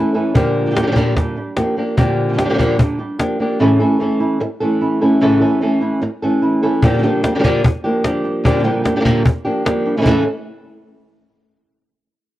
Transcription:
Already playing: E3 A3 C#4 E4 A4
0.14 E3 A3 C#4 E4 A4
0.34 A#2 D3 F3 A#3 D4 G4, muted nylon-string guitar stroke, cajon bass
0.56 cajon slap
0.66 D3 G3 D4 G4
0.71 D3 G3 D4 G4
0.75 A#2 D3 F3 G3 A#3 D4 G4, cajon slap
0.83 D3 F3 A#3 D4 G4
0.87 D3 F3 A#3 D4 G4
0.92 D3 F3 A#3 D4 G4
0.96 A#2 D3 F3 G3 A#3 D4 G4, cajon bass
1.16 A#2 D3 G3 D4 G4, muted nylon-string guitar stroke, cajon bass, cajon slap
1.37 G3 D4 G4
1.56 F3 A#3 D4 G4, muted nylon-string guitar stroke, cajon slap
1.77 F3 A#3 D4 G4
1.97 A#2 D3 F3 A#3 D4 G4, muted nylon-string guitar stroke, cajon bass
2.29 D3 G3 D4 G4
2.33 D3 G3 D4 G4
2.38 A#2 D3 F3 G3 A#3 D4 G4, cajon slap
2.45 D3 F3 A#3 D4 G4
2.49 D3 F3 A#3 D4 G4
2.54 D3 F3 A#3 D4 G4
2.58 A#2 D3 F3 G3 A#3 D4 G4, cajon bass
2.78 A#2 D3 G3 D4 G4, muted nylon-string guitar stroke, cajon bass
2.99 G3 D4 G4
3.19 F3 A#3 D4 G4, muted nylon-string guitar stroke, cajon slap
3.39 F3 A#3 D4 G4, cajon slap
3.59 A2 C#3 E3 A3 C#4 E4 A4
3.79 E3 A3 C#4 E4 A4
3.99 E3 A3 C#4 E4 A4
4.20 A3 C#4 E4
4.40 muted nylon-string guitar stroke
4.60 E3 A3 C#4 A4
4.81 A3 C#4 E4
5.01 E3 A3 C#4 E4 A4
5.21 A2 C#3 E3 A3 C#4 E4 A4
5.41 E3 A3 C#4 E4 A4
5.61 E3 A3 C#4 E4 A4
5.81 A3 C#4 E4
6.03 muted nylon-string guitar stroke
6.22 E3 A3 C#4 A4
6.42 A3 C#4 E4
6.62 E3 A3 C#4 E4 A4
6.82 A#2 D3 F3 G3 A#3 D4 G4, cajon bass
6.94 D3 G3 D4 G4
6.98 D3 G3 D4 G4
7.03 A#2 D3 F3 G3 A#3 D4 G4
7.23 F3 G3 A#3 D4 G4, cajon slap
7.35 D3 F3 A#3 D4 G4
7.39 D3 F3 A#3 D4 G4
7.44 A#2 D3 F3 A#3 D4 G4, cajon bass
7.64 muted nylon-string guitar stroke, cajon bass
7.84 F3 A#3 D4 G4
8.03 D3 F3 G3 A#3 D4 G4, cajon slap
8.24 G3 D4 G4, cajon slap
8.44 A#2 D3 F3 G3 A#3 D4 G4, cajon bass
8.55 D3 G3 D4 G4
8.59 D3 G3 D4 G4
8.64 A#2 D3 F3 G3 A#3 D4 G4
8.84 F3 G3 A#3 D4 G4, cajon slap
8.96 D3 F3 A#3 D4 G4
9.00 D3 F3 A#3 D4 G4
9.05 A#2 D3 F3 A#3 D4 G4, cajon bass
9.25 muted nylon-string guitar stroke, cajon bass
9.45 F3 A#3 D4 G4
9.65 D3 F3 G3 A#3 D4 G4, cajon slap
9.85 G3 D4 G4
9.97 C#3 E3 A3 C#4 E4 A4
10.01 C#3 E3 A3 C#4 E4 A4
10.06 A2 C#3 E3 A3 C#4 E4 A4, cajon bass

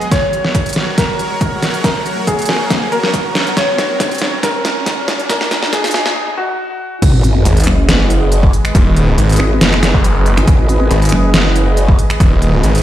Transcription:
Already playing: riser
0.01 closed hi-hat
0.11 F#3 F#4 A#4 C#5, kick, snare, closed hi-hat
0.33 closed hi-hat
0.45 snare
0.55 kick, closed hi-hat
0.66 closed hi-hat
0.69 closed hi-hat
0.73 snare, closed hi-hat
0.98 A#4, kick, snare, closed hi-hat
1.19 closed hi-hat
1.41 kick, closed hi-hat
1.62 snare, closed hi-hat
1.74 closed hi-hat
1.84 A#4, kick, snare, closed hi-hat
2.06 closed hi-hat
2.27 G#4, kick, closed hi-hat
2.39 closed hi-hat
2.42 closed hi-hat
2.45 snare, closed hi-hat
2.70 kick, snare, closed hi-hat
2.92 A#4, closed hi-hat
3.04 snare
3.14 kick, closed hi-hat
3.35 snare, closed hi-hat
3.47 closed hi-hat
3.57 C#5, kick, snare, closed hi-hat
3.78 snare, closed hi-hat
4.00 kick, snare, closed hi-hat
4.11 closed hi-hat
4.14 closed hi-hat
4.18 snare, closed hi-hat
4.43 A#4, kick, snare, closed hi-hat
4.65 snare, closed hi-hat
4.86 kick, snare, closed hi-hat
5.08 snare, closed hi-hat
5.19 closed hi-hat
5.29 A#4, kick, snare, closed hi-hat
5.41 snare
5.51 snare, closed hi-hat
5.63 snare
5.73 G#4, kick, snare, closed hi-hat
5.84 snare, closed hi-hat
5.87 closed hi-hat
5.91 snare, closed hi-hat
6.06 snare
6.37 F#4
7.02 G#1 G#3 G#4 B4 D#5, kick, closed hi-hat, crash, sub drop
7.24 closed hi-hat
7.45 G#1, closed hi-hat
7.57 closed hi-hat
7.60 closed hi-hat
7.64 F#1, finger snap, closed hi-hat
7.89 snare, closed hi-hat
8.10 closed hi-hat
8.32 closed hi-hat
8.43 kick
8.53 closed hi-hat
8.65 finger snap, closed hi-hat
8.75 D#1, kick, closed hi-hat
8.96 closed hi-hat
9.18 G#1, closed hi-hat
9.29 closed hi-hat
9.32 closed hi-hat
9.36 G#1, finger snap, closed hi-hat
9.61 F#1, snare, closed hi-hat
9.73 finger snap
9.83 finger snap, snare, closed hi-hat
9.94 F#1, kick
10.04 closed hi-hat
10.26 closed hi-hat
10.37 G#1, finger snap, closed hi-hat
10.47 G#1, kick, closed hi-hat
10.69 closed hi-hat
10.91 G#1, closed hi-hat
11.02 closed hi-hat
11.05 closed hi-hat
11.09 F#1, finger snap, closed hi-hat
11.34 snare, closed hi-hat
11.56 closed hi-hat
11.77 closed hi-hat
11.88 kick
11.99 closed hi-hat
12.10 finger snap, closed hi-hat
12.20 D#1, kick, closed hi-hat
12.42 closed hi-hat
12.63 G#1, closed hi-hat
12.75 closed hi-hat
12.78 closed hi-hat

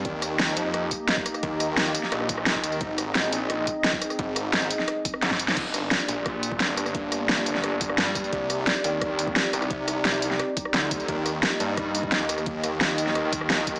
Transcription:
Already playing: D#4
0.05 D#2 A#3 G4 D#5, kick, closed hi-hat
0.22 cross-stick, closed hi-hat, tambourine
0.39 snare, closed hi-hat
0.48 tambourine
0.57 F2, closed hi-hat, tambourine
0.74 cross-stick, closed hi-hat
0.91 kick, closed hi-hat, tambourine
1.08 snare, closed hi-hat
1.17 kick
1.26 cross-stick, closed hi-hat, tambourine
1.34 cross-stick, tambourine
1.43 D#2, kick, closed hi-hat
1.60 cross-stick, closed hi-hat, tambourine
1.77 snare, closed hi-hat
1.86 tambourine
1.95 closed hi-hat, tambourine
2.03 snare
2.12 A#1, cross-stick, closed hi-hat
2.20 cross-stick
2.29 kick, closed hi-hat, tambourine
2.38 cross-stick
2.46 snare, closed hi-hat
2.55 kick
2.64 D#2, closed hi-hat, tambourine
2.72 tambourine
2.81 G#1 C4 G#4, kick, closed hi-hat
2.98 cross-stick, closed hi-hat, tambourine
3.15 snare, closed hi-hat
3.24 tambourine
3.33 A#1, closed hi-hat, tambourine
3.50 cross-stick, closed hi-hat
3.67 kick, closed hi-hat, tambourine
3.84 snare, closed hi-hat
3.93 kick
4.02 cross-stick, closed hi-hat, tambourine
4.10 cross-stick, tambourine
4.19 G#1, kick, closed hi-hat
4.36 cross-stick, closed hi-hat, tambourine
4.53 snare, closed hi-hat
4.62 tambourine
4.71 closed hi-hat, tambourine
4.79 snare
4.88 cross-stick, closed hi-hat
5.05 kick, closed hi-hat, tambourine
5.14 cross-stick
5.22 G#1, snare, closed hi-hat
5.31 kick, snare
5.39 G#1, closed hi-hat, tambourine
5.48 snare, tambourine
5.57 G1 A#3 D4 G4 D5, kick, closed hi-hat, crash
5.74 cross-stick, closed hi-hat, tambourine
5.91 snare, closed hi-hat
6.00 tambourine
6.08 A#1, closed hi-hat, tambourine
6.26 kick, cross-stick, closed hi-hat
6.43 closed hi-hat, tambourine
6.52 kick
6.60 G1, snare, closed hi-hat
6.77 cross-stick, closed hi-hat, tambourine
6.86 cross-stick, tambourine
6.95 kick, closed hi-hat
7.12 cross-stick, closed hi-hat, tambourine
7.29 snare, closed hi-hat
7.38 tambourine
7.46 closed hi-hat, tambourine
7.55 snare
7.64 cross-stick, closed hi-hat
7.81 kick, closed hi-hat, tambourine
7.89 cross-stick
7.98 G2, snare, closed hi-hat
8.15 kick, closed hi-hat, tambourine
8.24 tambourine
8.32 C2 C4 D#4, kick, closed hi-hat
8.50 cross-stick, closed hi-hat, tambourine
8.67 snare, closed hi-hat
8.76 tambourine
8.84 D#2, closed hi-hat, tambourine
9.02 kick, cross-stick, closed hi-hat
9.19 closed hi-hat, tambourine
9.27 kick
9.36 snare, closed hi-hat
9.53 C2, cross-stick, closed hi-hat, tambourine
9.62 cross-stick, tambourine
9.70 kick, closed hi-hat
9.88 cross-stick, closed hi-hat, tambourine
10.05 snare, closed hi-hat
10.14 tambourine
10.22 closed hi-hat, tambourine
10.31 snare
10.39 cross-stick, closed hi-hat
10.57 kick, closed hi-hat, tambourine
10.65 cross-stick
10.74 D2, snare, closed hi-hat
10.91 kick, closed hi-hat, tambourine
11.00 tambourine
11.08 D#2 A#3 D#5, kick, closed hi-hat
11.26 cross-stick, closed hi-hat, tambourine
11.43 snare, closed hi-hat
11.52 tambourine
11.60 G2, closed hi-hat, tambourine
11.77 kick, cross-stick, closed hi-hat
11.95 closed hi-hat, tambourine
12.03 kick
12.12 D#2, snare, closed hi-hat
12.29 cross-stick, closed hi-hat, tambourine
12.38 cross-stick, tambourine
12.46 kick, closed hi-hat
12.64 cross-stick, closed hi-hat, tambourine
12.81 snare, closed hi-hat
12.89 tambourine
12.98 closed hi-hat, tambourine
13.07 snare
13.15 cross-stick, closed hi-hat
13.33 kick, closed hi-hat, tambourine
13.41 cross-stick
13.50 D#2, snare, closed hi-hat
13.67 kick, closed hi-hat, tambourine
13.76 tambourine

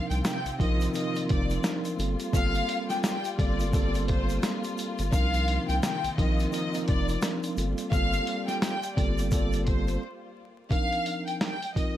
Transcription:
Already playing: C3 D#3 F3 A#3 C4 D4 D#4 F4 A#4
0.10 C2 G5, closed hi-hat, shaker
0.24 G5, snare, closed hi-hat, shaker
0.45 A#1, closed hi-hat, shaker
0.59 A#1 F3 C4 D#4 F4 A#4 D#5, kick, closed hi-hat
0.80 closed hi-hat, shaker
0.93 F3 C4 D#4 F4 A#4 D#5, closed hi-hat, shaker
1.15 closed hi-hat, shaker
1.29 F1 D5, kick, closed hi-hat
1.50 closed hi-hat, shaker
1.62 F3 C4 D4 D#4 A#4, snare, closed hi-hat, shaker
1.85 closed hi-hat, shaker
1.97 G1 G3 A#3 C4 F4 A4, closed hi-hat, shaker
2.20 closed hi-hat, shaker
2.32 G1 G3 A#3 C4 F4 A4 F5, kick, closed hi-hat, shaker
2.54 closed hi-hat, shaker
2.69 closed hi-hat
2.89 G5, snare, closed hi-hat, shaker
3.04 G5, snare, closed hi-hat, shaker
3.25 closed hi-hat, shaker
3.37 G1 G3 A#3 C4 F4 A4 D5, kick, closed hi-hat
3.60 closed hi-hat, shaker
3.72 G3 A#3 C4 F4 A4 D5, kick, closed hi-hat, shaker
3.94 closed hi-hat, shaker
4.08 C5, kick, closed hi-hat
4.29 closed hi-hat, shaker
4.43 snare, closed hi-hat, shaker
4.64 closed hi-hat, shaker
4.78 closed hi-hat, shaker
4.99 G1, closed hi-hat, shaker
5.11 C2 C3 D#3 F3 C4 D4 D#4 A#4 F5, kick, closed hi-hat, shaker
5.34 closed hi-hat, shaker
5.48 closed hi-hat
5.68 C2 G5, closed hi-hat, shaker
5.82 G5, snare, closed hi-hat, shaker
6.04 A#1, closed hi-hat, shaker
6.17 A#1 F3 C4 D#4 F4 A#4 D#5, kick, closed hi-hat
6.39 closed hi-hat, shaker
6.51 F3 C4 D#4 F4 A#4 D#5, closed hi-hat, shaker
6.74 closed hi-hat, shaker
6.87 F1 D5, kick, closed hi-hat
7.08 closed hi-hat, shaker
7.20 F3 C4 D4 D#4 A#4, snare, closed hi-hat, shaker
7.43 closed hi-hat, shaker
7.55 G1 G3 A#3 C4 F4 A4, closed hi-hat, shaker
7.78 closed hi-hat, shaker
7.90 G1 G3 A#3 C4 F4 A4 F5, kick, closed hi-hat, shaker
8.13 closed hi-hat, shaker
8.27 closed hi-hat
8.47 G5, snare, closed hi-hat, shaker
8.61 G5, snare, closed hi-hat, shaker
8.83 closed hi-hat, shaker
8.96 G1 G3 A#3 C4 F4 A4 D5, kick, closed hi-hat
9.18 closed hi-hat, shaker
9.30 G3 A#3 C4 F4 A4 D5, kick, closed hi-hat, shaker
9.53 closed hi-hat, shaker
9.65 C5, kick, closed hi-hat
9.87 closed hi-hat, shaker
10.69 F3 C4 D4 D#4 A#4 F5, kick, closed hi-hat
10.93 closed hi-hat
11.06 closed hi-hat
11.26 G5, closed hi-hat
11.41 G5, snare, closed hi-hat
11.62 closed hi-hat
11.75 F3 C4 D#4 F4 A#4 D#5, kick, closed hi-hat

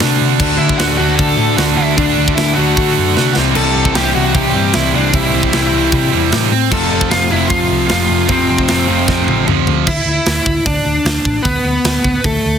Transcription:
Already playing: D3 A3 D4 F#4
0.00 C3 D3 A3 D4, snare
0.21 C3
0.39 D2 D3 A3 D4 F#4, kick, crash
0.58 D2 E4 E5
0.69 kick
0.78 D2 F#4 F#5, snare, open hi-hat
0.97 D2 A3 D4 F#4 F#5
1.02 D3
1.16 D2 A4 A5, kick, open hi-hat
1.39 A2
1.56 D2 D3 A3 D4 F#4 F#5, snare, open hi-hat
1.76 D2 E4 E5
1.96 D2 D3 A3 D4 D5, kick, open hi-hat
2.02 F#4
2.17 D2
2.28 kick
2.35 D2 E4 E5, snare, open hi-hat
2.53 D2 D4 F#4 F#5
2.57 D3 A3 D4
2.77 D3, kick, open hi-hat
2.98 F#2
3.14 C3 D3 A3 D4, snare
3.35 C2 C3 E3 G3 C4, snare
3.39 E4
3.55 C2 A4 A5, crash
3.76 C2
3.85 kick
3.94 C2 C3 E3 G3 C4 G4 G5, snare, open hi-hat
3.98 C4 E4
4.15 C2 F#4 F#5
4.35 C2 G4 G5, kick, open hi-hat
4.53 G2 C3 G3 C4
4.73 C2 E4 E5, snare, open hi-hat
4.93 C2 C3 E3 G3 C4 D4 D5
4.98 E4
5.14 C2 E4 E5, kick, open hi-hat
5.33 C2
5.43 kick
5.53 C2 C3 E3 G3 C4, snare, open hi-hat
5.57 E4
5.73 C2
5.92 C3, kick, open hi-hat
6.12 E2 C3 G3 C4
6.32 A2, snare, open hi-hat
6.52 A2
6.71 F1 F2 C3 F3 A3 C4 F4 A4 A5, kick, crash
6.91 F1
7.01 kick
7.10 F1 F4 F5, snare, open hi-hat
7.30 F1 F2 C3 F3 A3 C4 E4 F4 E5
7.48 F1 F4 F5, kick, open hi-hat
7.71 C2
7.88 F1 F2 C3 F4 F5, snare, open hi-hat
7.92 F3
8.09 F1
8.27 F1 F2 C3 F3 A3 C4, kick, open hi-hat
8.31 C4 F4 C5
8.50 F1
8.58 kick
8.68 F1, snare, open hi-hat
8.86 F1 F2 C3 F3 A3 C4 F4
8.91 F3
9.08 F2, kick, snare
9.27 A1, high tom
9.45 D2 F2 C3 F3, mid tom
9.67 D2, floor tom
9.87 D2 E4 E5, kick, crash
10.06 D2
10.26 D2, snare, open hi-hat
10.46 D2, kick
10.66 D2 D4 D5, kick, open hi-hat
10.85 D2
11.05 D2, snare, open hi-hat
11.25 A1, kick
11.43 D2 B3 B4, kick, open hi-hat
11.64 D2
11.84 D2, snare, open hi-hat
12.04 D2, kick
12.24 D2 A3 A4, kick, open hi-hat
12.45 D2

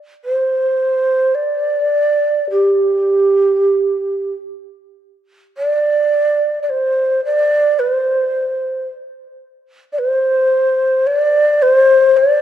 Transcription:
0.25 C5
1.35 D5
2.51 G4
5.58 D5
6.63 D5
6.70 C5
7.25 D5
7.79 B4
7.91 C5
9.93 D5
9.99 C5
11.07 D5
11.62 C5
12.17 D5

